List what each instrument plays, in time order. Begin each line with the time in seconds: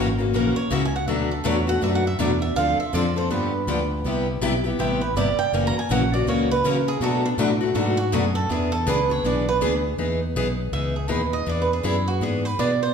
Already playing: fingered electric bass G#1
0.18 steel-string acoustic guitar A#3 C#4 F#4
0.33 fingered electric bass A#1, steel-string acoustic guitar C#3 E3 F#3 A#3 C#4 E4 F#4 A#4
0.56 steel-string acoustic guitar C#5, muted fingered electric bass stroke
0.70 fingered electric bass C#2, steel-string acoustic guitar C#3 E3 F#3 A#3 C#4 E4 F#4 A#4 E5
0.85 steel-string acoustic guitar G#5
0.96 steel-string acoustic guitar F#5
1.07 fingered electric bass D2, steel-string acoustic guitar B2 F#3 A3 D4 F#4 B4 E5
1.31 steel-string acoustic guitar A4
1.44 fingered electric bass E2, steel-string acoustic guitar B2 F#3 A3 D4 F#4 B4 C#5
1.67 steel-string acoustic guitar A3 D4 F#4 F#5
1.82 fingered electric bass F#2, steel-string acoustic guitar B2 F#3 A3 D4 F#4 B4 E5
1.95 steel-string acoustic guitar F#5
2.07 steel-string acoustic guitar E5
2.19 fingered electric bass E2, steel-string acoustic guitar B2 F#3 A3 D4 F#4 B4 D5
2.42 steel-string acoustic guitar E5
2.55 fingered electric bass D2, steel-string acoustic guitar D3 F3 C4 D4 A4 F5
2.78 steel-string acoustic guitar E5, muted fingered electric bass stroke
2.93 fingered electric bass F2, steel-string acoustic guitar D3 F3 C4 D4 A4 D5
3.16 steel-string acoustic guitar C4 D4 A4 C5
3.30 fingered electric bass G2, steel-string acoustic guitar D3 F3 B3 D4 G4 B4
3.67 fingered electric bass D2, steel-string acoustic guitar D3 F3 B3 D4 G4
4.04 fingered electric bass C2, steel-string acoustic guitar C3 G3 B3 E4 G4
4.41 fingered electric bass B1, steel-string acoustic guitar C3 G3 B3 E4 G4
4.64 steel-string acoustic guitar B3 E4 G4
4.78 fingered electric bass A1, steel-string acoustic guitar C3 G3 B3 E4 G4 G5
5.01 steel-string acoustic guitar B4
5.15 fingered electric bass G1, steel-string acoustic guitar C3 G3 B3 E4 G4 D5
5.37 steel-string acoustic guitar G5, muted fingered electric bass stroke
5.52 fingered electric bass F#1, steel-string acoustic guitar C#3 E3 F#3 A#3 C#4 E4 F#4 A#4 G#5
5.67 steel-string acoustic guitar A#5
5.75 steel-string acoustic guitar G#5, muted fingered electric bass stroke
5.89 fingered electric bass A#1, steel-string acoustic guitar C#3 E3 F#3 A#3 C#4 E4 F#4 A#4 F#5
6.14 steel-string acoustic guitar A#3 C#4 F#4 D5
6.26 fingered electric bass C#2, steel-string acoustic guitar C#3 E3 F#3 A#3 C#4 E4 F#4 A#4 C#5
6.51 steel-string acoustic guitar B4
6.63 fingered electric bass C#3, steel-string acoustic guitar C#3 E3 F#3 A#3 C#4 E4 F#4 A#4
6.88 steel-string acoustic guitar G#4
7.00 fingered electric bass B2, steel-string acoustic guitar B2 F#3 A3 D4 F#4 A4 B4
7.25 steel-string acoustic guitar D4
7.37 fingered electric bass A2, steel-string acoustic guitar B2 F#3 A3 D4 F#4 B4
7.61 steel-string acoustic guitar A3 D4 F#4
7.75 fingered electric bass G#2, steel-string acoustic guitar B2 F#3 A3 D4 F#4 A4 B4
7.97 steel-string acoustic guitar F#4
8.12 fingered electric bass F#2, steel-string acoustic guitar B2 F#3 A3 D4 F#4 G#4 B4
8.35 steel-string acoustic guitar A4
8.49 fingered electric bass E2, steel-string acoustic guitar E3 B3 D4 G#4 B4
8.72 steel-string acoustic guitar A4
8.86 fingered electric bass C#2, steel-string acoustic guitar E3 B3 D4 G#4 B4
9.09 steel-string acoustic guitar B3 D4 G#4 C#5
9.24 fingered electric bass B1, steel-string acoustic guitar E3 B3 D4 G#4 B4 D5
9.49 steel-string acoustic guitar B4
9.61 fingered electric bass D2, steel-string acoustic guitar E3 B3 D4 G#4 B4
9.98 fingered electric bass E2, steel-string acoustic guitar E3 B3 D#4 G#4
10.36 fingered electric bass B1, steel-string acoustic guitar E3 B3 D#4 G#4
10.72 fingered electric bass C#2, steel-string acoustic guitar E3 B3 D#4 G#4 E5
10.96 steel-string acoustic guitar G#4
11.08 fingered electric bass D#2, steel-string acoustic guitar E3 B3 D#4 G#4 B4
11.33 steel-string acoustic guitar D#5
11.46 fingered electric bass E2, steel-string acoustic guitar E3 B3 D4 G#4 D5
11.62 steel-string acoustic guitar B4
11.73 steel-string acoustic guitar G#4
11.83 fingered electric bass F#2, steel-string acoustic guitar E3 B3 D4 E4 G#4
12.08 steel-string acoustic guitar F#4
12.20 fingered electric bass G#2, steel-string acoustic guitar E3 B3 D4 G#4
12.45 steel-string acoustic guitar B4
12.59 fingered electric bass B2, steel-string acoustic guitar E3 B3 D4 G#4 D5
12.83 steel-string acoustic guitar C5